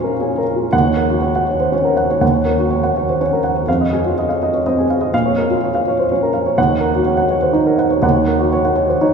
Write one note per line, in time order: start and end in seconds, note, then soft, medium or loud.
0.00 0.69 A#2 medium
0.00 0.15 C#4 soft
0.00 0.13 F4 soft
0.00 0.31 A#4 soft
0.00 0.76 C5 soft
0.00 0.75 C#5 soft
0.00 0.75 F5 medium
0.20 0.42 C#4 soft
0.20 0.38 G#4 soft
0.38 0.66 A#4 soft
0.56 0.73 F4 soft
0.73 2.18 D#2 medium
0.73 0.93 F#5 medium
0.84 1.05 C#5 soft
0.96 1.17 A#4 soft
1.10 1.30 F#4 soft
1.21 1.42 C#5 soft
1.35 1.55 F#5 soft
1.49 1.68 C#5 soft
1.60 1.72 C5 soft
1.72 1.92 C#4 soft
1.72 1.92 C#5 soft
1.85 2.04 A#4 soft
1.97 2.17 F#5 soft
2.10 2.30 C#5 soft
2.21 3.63 D#2 soft
2.21 2.41 F#5 soft
2.33 2.53 C#5 soft
2.45 2.66 A#4 soft
2.58 2.78 F#4 soft
2.71 2.91 C#5 soft
2.83 3.03 F#5 soft
2.97 3.16 C#5 soft
3.09 3.20 C5 soft
3.21 3.39 C#4 soft
3.21 3.39 C#5 soft
3.33 3.51 A#4 soft
3.44 3.63 F#5 soft
3.57 3.68 C#5 soft
3.68 5.09 F2 medium
3.68 3.87 F5 medium
3.81 4.00 D#5 soft
3.93 4.12 G#4 soft
4.06 4.24 F4 soft
4.18 4.37 D#5 soft
4.29 4.48 F5 soft
4.43 4.61 D#5 soft
4.54 4.65 C#5 soft
4.66 4.85 C4 soft
4.66 4.85 D#5 soft
4.79 4.97 G#4 soft
4.90 5.09 F5 soft
5.01 5.13 D#5 soft
5.13 6.54 A#2 soft
5.13 5.32 F5 medium
5.26 5.44 C#5 soft
5.38 5.57 A#4 soft
5.50 5.69 F4 soft
5.63 5.82 C#5 soft
5.75 5.93 F5 soft
5.88 6.06 C#5 soft
5.99 6.10 C5 soft
6.12 6.30 C#4 soft
6.12 6.30 C#5 soft
6.23 6.41 A#4 soft
6.33 6.53 F5 soft
6.46 6.58 C#5 soft
6.58 8.00 D#2 medium
6.58 6.77 F#5 medium
6.69 6.89 C#5 soft
6.81 7.00 A#4 soft
6.95 7.14 F#4 soft
7.05 7.25 C#5 soft
7.17 7.37 F#5 soft
7.31 7.50 C#5 soft
7.42 7.54 C5 soft
7.53 7.73 D#4 soft
7.53 7.74 C#5 soft
7.66 7.86 A#4 soft
7.78 7.98 F#5 soft
7.91 8.11 C#5 soft
8.02 9.13 D#2 medium
8.02 8.23 F#5 medium
8.15 8.35 C#5 soft
8.28 8.47 A#4 soft
8.39 8.59 F#4 soft
8.53 8.72 C#5 soft
8.65 8.85 F#5 soft
8.76 8.96 C#5 soft
8.89 9.02 C5 soft
9.01 9.13 D#4 soft
9.01 9.13 C#5 soft